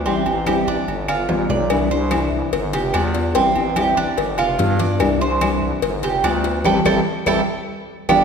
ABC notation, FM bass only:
X:1
M:4/4
L:1/16
Q:1/4=146
K:Gmix
V:1 name="FM bass" clef=bass
A,,,2 A,,,4 A,,, z G,,,2 G,,,2 A,,,2 B,,,2 | C,,2 C,,4 C,, z G,,,2 F,,,2 E,,4 | A,,,2 A,,,4 A,,, z G,,,2 F,,,2 G,,4 | C,,2 C,,4 C,, z G,,,2 F,,,2 D,,4 |
A,,,2 A,,,2 z2 A,,,2 z6 G,,,2 |]